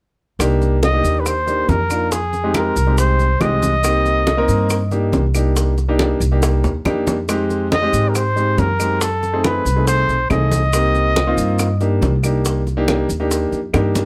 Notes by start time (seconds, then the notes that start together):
0.39 C2 A#3 D4 D#4 G4, high bongo, high conga, claves, maracas
0.62 high bongo, high conga, maracas
0.83 D#5, high bongo, high conga, maracas
0.93 A#3 D4 D#4 G4
1.03 D#2, high conga, maracas
1.20 B4
1.26 C5, high bongo, high conga, claves, maracas
1.47 A#3 D4 D#4 G4, high bongo, high conga, maracas
1.68 F2 A#4, high bongo, low bongo, high conga, maracas
1.90 A#3 D4 D#4 F4, high bongo, high conga, claves, maracas
2.12 G#4, high bongo, high conga, maracas
2.33 high bongo, high conga, maracas
2.44 G#3 C4 D#4 G4
2.54 A#4, high bongo, high conga, claves, maracas
2.76 C2, high conga, maracas
2.87 G#3 C4 D#4 G4
2.98 C5, high bongo, high conga, maracas
3.19 high bongo, high conga, maracas
3.40 C2 G#3 C4 D#4 G4 D#5, high bongo, low bongo, high conga, claves, maracas
3.63 high bongo, high conga, maracas
3.83 A#3 C4 D#4 G4, high bongo, high conga, claves, maracas
4.06 high bongo, high conga, maracas
4.27 high bongo, high conga, maracas
4.37 A#3 C4 D#4 A#4
4.48 G2, high conga, maracas
4.70 high bongo, high conga, claves, maracas
4.91 A#3 D4 D#4 G4, high bongo, high conga, maracas
5.12 C2, high bongo, low bongo, high conga, maracas
5.34 A#3 D4 D#4 G4, high bongo, high conga, claves, maracas
5.56 high bongo, high conga, maracas
5.78 high bongo, high conga, maracas
5.88 A#3 D4 D#4 G4
5.99 high bongo, high conga, claves, maracas
6.20 C2, high conga, maracas
6.32 A#3 D4 D#4 G4
6.42 high bongo, high conga, maracas
6.64 D#2, low bongo, high conga, maracas
6.85 F2 A#3 D4 D#4 G4, low bongo, high conga, claves, maracas
7.07 low bongo, high conga, maracas
7.29 G#3 C4 D#4 G4, high bongo, high conga, claves, maracas
7.50 high bongo, high conga, maracas
7.72 D#5, high bongo, high conga, maracas
7.82 G#3 C4 D#4 G4
7.93 G#2, high conga, maracas
8.09 A#4
8.15 C5, high bongo, high conga, claves, maracas
8.36 G#3 C4 D#4 G4, high bongo, high conga, maracas
8.58 F#2 A#4, high bongo, low bongo, high conga, maracas
8.79 G#3 C4 D#4 G4, high bongo, high conga, claves, maracas
9.01 A4, high bongo, high conga, maracas
9.23 high bongo, high conga, maracas
9.33 A3 C4 D#4 G#4
9.44 B4, high bongo, high conga, claves, maracas
9.65 C2, high conga, maracas
9.76 A3 C4 D#4 G#4
9.87 C5, high bongo, high conga, maracas
10.08 B1, high bongo, high conga, maracas
10.29 C2 A3 C4 D#4 G#4 D#5, high bongo, low bongo, high conga, claves, maracas
10.52 high bongo, high conga, maracas
10.73 A#3 C4 D#4 G4, high bongo, high conga, claves, maracas
10.95 high bongo, high conga, maracas
11.16 high bongo, high conga, maracas
11.27 A#3 C4 D#4 F4
11.37 G2, high conga, maracas
11.59 high bongo, high conga, claves, maracas
11.81 A#3 D4 D#4 G4, high bongo, high conga, maracas
12.02 C2, high bongo, low bongo, high conga, maracas
12.23 A#3 D4 D#4 G4, high bongo, high conga, claves, maracas
12.45 high bongo, high conga, maracas
12.67 high bongo, high conga, maracas
12.77 A#3 D4 D#4 G4
12.88 high bongo, high conga, claves, maracas
13.09 D#2, high conga, maracas
13.20 A#3 D4 D#4 G4
13.31 high bongo, high conga, maracas
13.52 F2, high bongo, high conga, maracas
13.73 G2 A#3 D4 D#4 G4, high bongo, high conga, claves, maracas
13.95 low bongo, high conga, maracas